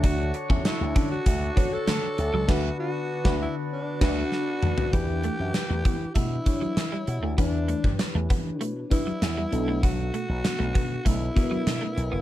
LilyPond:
<<
  \new Staff \with { instrumentName = "Alto saxophone" } { \time 4/4 \key e \dorian \tempo 4 = 98 fis'8 r8 e'8. fis'4 a'4~ a'16 | fis'8 fis'4 e'8 d'8 fis'4. | g'2 e'2 | d'4 r4. e'4. |
fis'2 e'2 | }
  \new Staff \with { instrumentName = "FM electric piano" } { \time 4/4 \key e \dorian <d' fis' a' cis''>4 r4. <d' fis' a' cis''>4 r8 | <d d' fis' b' d''>8 r8. <d d' fis' b' d''>8 r8. <d' fis' b' d''>8 r4 | <d' e' g' b'>4~ <d' e' g' b'>16 r4 r16 <d' e' g' cis''>4 r8 | <d' e' g' b'>4~ <d' e' g' b'>16 r4 r16 <d' e' g' b'>4 <b d' fis' a'>8~ |
<b d' fis' a'>4 r4. <b d' fis' bes' b'>4 r8 | }
  \new Staff \with { instrumentName = "FM electric piano" } { \clef bass \time 4/4 \key e \dorian d4 r2. | r1 | e4. r2 r8 | e4. r2 b,8~ |
b,4 r2. | }
  \new Staff \with { instrumentName = "Harmonium" } { \time 4/4 \key e \dorian << { <d' fis'>1~ | <d' fis'>1 | r1 | r1 |
r1 | } \\ { cis''1 | b1 | r1 | r1 |
r1 | } >> }
  \new Staff \with { instrumentName = "Clean electric guitar" } { \time 4/4 \key e \dorian d'16 r8 cis'16 r8 cis'16 r8. b16 r16 a16 r8 fis16 | r1 | b16 r16 a16 r8 a16 b16 r16 a16 r8 fis16 r16 g16 r16 a16 | b16 r16 a16 r8 a16 b16 r16 a16 r8 fis16 r16 g16 r16 a16 |
b16 r16 a16 r8 a16 b16 r16 a16 r8 fis16 r16 a16 r16 b16 | }
  \new Staff \with { instrumentName = "Slap bass" } { \clef bass \time 4/4 \key e \dorian d,8. e,16 r16 d,16 d8 d,8 r8 d16 r16 d,16 cis,16 | d,8 r8. d,8 r8. d,8 r4 | e,8. fis,16 r16 e,16 e8 b,8 r8 e16 r16 b,16 d,16 | e,8. g,16 r16 e,16 e8 b,8 r8 e,8 b,,8~ |
b,,8. b,,16 r16 b,,16 b,8 b,,8 r8 b,16 r16 b,,16 fis,,16 | }
  \new DrumStaff \with { instrumentName = "Drums" } \drummode { \time 4/4 <hh bd>8 hh16 bd16 <hh sn>8 <hh bd>8 <hh bd>8 <hh bd>8 <hh sn>8 hh8 | <cymc bd sn>4 r16 <bd sn>8. r8 <cymc bd sn>8 sn8 toml16 tomfh16 | <hh bd>8 hh8 <hh sn>8 <hh bd>8 <hh bd>8 <hh bd>8 <hh sn>8 hh8 | <hh bd>8 hh16 bd16 <hh sn>8 <hh bd>8 hh8 <hh bd>8 <hh sn>8 hh8 |
<hh bd>8 hh8 <hh sn>8 <hh bd>8 <hh bd>8 <hh bd>8 <hh sn>8 hh8 | }
>>